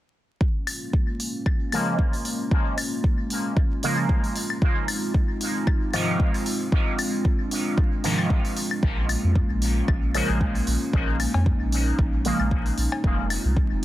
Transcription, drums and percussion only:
0.41 kick loud
0.67 open hi-hat medium
0.67 claves medium
0.93 kick loud
1.20 open hi-hat medium
1.46 kick loud
1.46 claves medium
1.72 open hi-hat medium
1.72 claves medium
1.99 kick loud
2.13 open hi-hat soft
2.25 open hi-hat medium
2.51 kick loud
2.78 open hi-hat medium
2.78 claves medium
3.04 kick loud
3.30 open hi-hat medium
3.57 kick loud
3.83 open hi-hat medium
3.98 claves medium
4.09 kick loud
4.24 open hi-hat soft
4.35 open hi-hat medium
4.50 claves medium
4.62 kick loud
4.88 open hi-hat medium
4.88 claves medium
5.14 kick loud
5.41 open hi-hat medium
5.67 kick loud
5.67 claves medium
5.93 open hi-hat medium
5.93 claves medium
6.20 kick loud
6.34 open hi-hat soft
6.46 open hi-hat medium
6.72 kick loud
6.99 open hi-hat medium
6.99 claves medium
7.25 kick loud
7.51 open hi-hat medium
7.78 kick loud
8.04 open hi-hat medium
8.19 claves medium
8.30 kick loud
8.45 open hi-hat soft
8.57 open hi-hat medium
8.71 claves medium
8.83 kick loud
9.09 open hi-hat medium
9.09 claves medium
9.35 kick loud
9.62 open hi-hat medium
9.88 kick loud
9.88 claves medium
10.14 open hi-hat medium
10.14 claves medium
10.41 kick loud
10.55 open hi-hat soft
10.67 open hi-hat medium
10.93 kick loud
11.20 open hi-hat medium
11.20 claves medium
11.34 cowbell medium
11.46 kick loud
11.72 open hi-hat medium
11.99 kick loud
12.25 open hi-hat medium
12.40 claves medium
12.51 kick loud
12.66 open hi-hat soft
12.78 open hi-hat medium
12.92 cowbell medium
12.92 claves medium
13.04 kick loud
13.30 open hi-hat medium
13.30 claves medium
13.56 kick medium

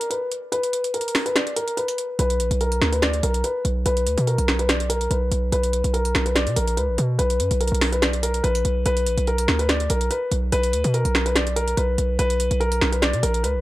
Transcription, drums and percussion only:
0.01 closed hi-hat medium
0.11 closed hi-hat medium
0.32 closed hi-hat medium
0.52 closed hi-hat medium
0.63 closed hi-hat medium
0.73 closed hi-hat medium
0.84 closed hi-hat medium
0.94 closed hi-hat medium
1.01 closed hi-hat medium
1.08 closed hi-hat medium
1.15 finger snap medium
1.15 snare medium
1.15 open hi-hat medium
1.26 closed hi-hat medium
1.36 finger snap loud
1.36 snare loud
1.36 closed hi-hat medium
1.47 closed hi-hat medium
1.56 closed hi-hat loud
1.68 closed hi-hat medium
1.77 closed hi-hat medium
1.88 closed hi-hat medium
1.98 closed hi-hat medium
2.19 closed hi-hat medium
2.30 closed hi-hat medium
2.40 closed hi-hat medium
2.51 closed hi-hat medium
2.61 closed hi-hat soft
2.72 closed hi-hat medium
2.82 finger snap medium
2.82 snare medium
2.93 closed hi-hat medium
3.02 finger snap loud
3.02 snare loud
3.02 closed hi-hat medium
3.13 closed hi-hat medium
3.23 closed hi-hat loud
3.34 closed hi-hat medium
3.44 closed hi-hat medium
3.65 closed hi-hat medium
3.86 closed hi-hat medium
3.97 closed hi-hat medium
4.07 closed hi-hat medium
4.18 closed hi-hat medium
4.27 closed hi-hat soft
4.38 closed hi-hat medium
4.48 finger snap medium
4.48 snare medium
4.59 closed hi-hat medium
4.69 finger snap loud
4.69 snare loud
4.69 closed hi-hat medium
4.80 closed hi-hat medium
4.90 closed hi-hat loud
5.01 closed hi-hat medium
5.11 closed hi-hat medium
5.32 closed hi-hat medium
5.52 closed hi-hat medium
5.63 closed hi-hat medium
5.73 closed hi-hat medium
5.84 closed hi-hat medium
5.94 closed hi-hat soft
6.05 closed hi-hat medium
6.15 finger snap medium
6.15 snare medium
6.26 closed hi-hat medium
6.36 finger snap loud
6.36 snare loud
6.36 closed hi-hat medium
6.47 closed hi-hat medium
6.56 closed hi-hat loud
6.67 closed hi-hat medium
6.77 closed hi-hat medium
6.98 closed hi-hat medium
7.19 closed hi-hat medium
7.30 closed hi-hat medium
7.40 closed hi-hat medium
7.51 closed hi-hat medium
7.61 closed hi-hat medium
7.68 closed hi-hat medium
7.75 closed hi-hat medium
7.81 finger snap medium
7.81 snare medium
7.81 open hi-hat medium
7.92 closed hi-hat medium
8.02 finger snap loud
8.02 snare loud
8.02 closed hi-hat medium
8.13 closed hi-hat medium
8.23 closed hi-hat loud
8.34 closed hi-hat medium
8.44 closed hi-hat medium
8.55 closed hi-hat medium
8.65 closed hi-hat medium
8.86 closed hi-hat medium
8.97 closed hi-hat medium
9.06 closed hi-hat medium
9.18 closed hi-hat medium
9.27 closed hi-hat soft
9.38 closed hi-hat medium
9.48 finger snap medium
9.48 snare medium
9.59 closed hi-hat medium
9.69 finger snap loud
9.69 snare loud
9.69 closed hi-hat medium
9.80 closed hi-hat medium
9.90 closed hi-hat loud
10.01 closed hi-hat medium
10.11 closed hi-hat medium
10.32 closed hi-hat medium
10.52 closed hi-hat medium
10.63 closed hi-hat medium
10.73 closed hi-hat medium
10.84 closed hi-hat medium
10.94 closed hi-hat soft
11.05 closed hi-hat medium
11.15 finger snap medium
11.15 snare medium
11.26 closed hi-hat medium
11.36 finger snap loud
11.36 snare loud
11.36 closed hi-hat medium
11.47 closed hi-hat medium
11.56 closed hi-hat loud
11.68 closed hi-hat medium
11.77 closed hi-hat medium
11.98 closed hi-hat medium
12.19 closed hi-hat medium
12.30 closed hi-hat medium
12.40 closed hi-hat medium
12.51 closed hi-hat medium
12.61 closed hi-hat soft
12.72 closed hi-hat medium
12.81 finger snap medium
12.81 snare medium
12.93 closed hi-hat medium
13.02 finger snap loud
13.02 snare loud
13.02 closed hi-hat medium
13.13 closed hi-hat medium
13.23 closed hi-hat loud
13.34 closed hi-hat medium
13.44 closed hi-hat medium

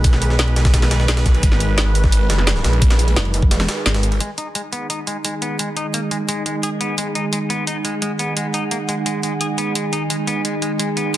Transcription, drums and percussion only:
0.04 kick loud
0.04 closed hi-hat medium
0.04 ride medium
0.13 snare medium
0.13 snare soft
0.22 closed hi-hat medium
0.22 ride medium
0.30 snare soft
0.39 snare loud
0.39 closed hi-hat medium
0.39 ride medium
0.48 ride soft
0.56 snare loud
0.56 closed hi-hat medium
0.56 ride medium
0.65 kick loud
0.65 snare loud
0.65 ride medium
0.74 kick medium
0.74 snare loud
0.74 closed hi-hat medium
0.74 ride medium
0.82 snare loud
0.82 snare soft
0.82 ride medium
0.91 snare loud
0.91 closed hi-hat medium
0.91 ride medium
1.00 snare medium
1.08 snare loud
1.08 closed hi-hat loud
1.08 ride medium
1.17 snare loud
1.17 ride medium
1.26 kick loud
1.26 snare medium
1.26 closed hi-hat medium
1.34 ride medium
1.43 kick loud
1.43 closed hi-hat loud
1.43 ride medium
1.52 snare soft
1.60 closed hi-hat medium
1.60 ride medium
1.78 snare loud
1.78 closed hi-hat loud
1.78 ride medium
1.95 closed hi-hat medium
1.95 ride medium
2.04 kick loud
2.04 snare soft
2.12 closed hi-hat loud
2.12 ride loud
2.30 snare loud
2.30 closed hi-hat medium
2.30 ride medium
2.38 snare soft
2.47 snare loud
2.47 closed hi-hat loud
2.47 ride medium
2.56 snare medium
2.64 snare loud
2.64 closed hi-hat medium
2.64 ride medium
2.73 ride soft
2.82 kick loud
2.82 closed hi-hat loud
2.82 ride medium
2.90 snare loud
2.90 snare soft
2.90 ride medium
2.99 closed hi-hat medium
2.99 ride soft
3.08 ride medium
3.16 snare loud
3.16 closed hi-hat loud
3.16 ride medium
3.25 ride soft
3.34 closed hi-hat medium
3.34 ride medium
3.42 kick loud
3.51 snare loud
3.51 closed hi-hat loud
3.51 ride medium
3.60 snare loud
3.60 snare medium
3.60 ride medium
3.68 snare loud
3.68 closed hi-hat medium
3.68 ride medium
3.86 snare loud
3.86 closed hi-hat loud
3.86 ride medium
3.94 snare loud
3.94 ride medium
4.03 closed hi-hat medium
4.12 ride medium
4.20 closed hi-hat medium
4.38 closed hi-hat medium
4.55 closed hi-hat medium
4.73 closed hi-hat medium
4.90 closed hi-hat medium
5.07 closed hi-hat medium
5.25 closed hi-hat loud
5.42 closed hi-hat medium
5.59 closed hi-hat medium
5.77 closed hi-hat medium
5.94 closed hi-hat medium
6.11 closed hi-hat medium
6.29 closed hi-hat medium
6.46 closed hi-hat medium
6.63 closed hi-hat medium
6.81 closed hi-hat medium
6.98 closed hi-hat medium
7.15 closed hi-hat medium
7.33 closed hi-hat medium
7.50 closed hi-hat medium
7.67 closed hi-hat medium
7.85 closed hi-hat medium
8.02 closed hi-hat medium
8.19 closed hi-hat medium
8.37 closed hi-hat medium
8.54 closed hi-hat medium
8.71 closed hi-hat medium
8.89 closed hi-hat medium
9.06 closed hi-hat medium
9.23 closed hi-hat medium
9.41 closed hi-hat medium
9.58 closed hi-hat medium
9.75 closed hi-hat medium
9.93 closed hi-hat medium
10.10 closed hi-hat medium
10.27 closed hi-hat medium
10.45 closed hi-hat medium
10.62 closed hi-hat medium
10.79 closed hi-hat medium
10.97 closed hi-hat medium

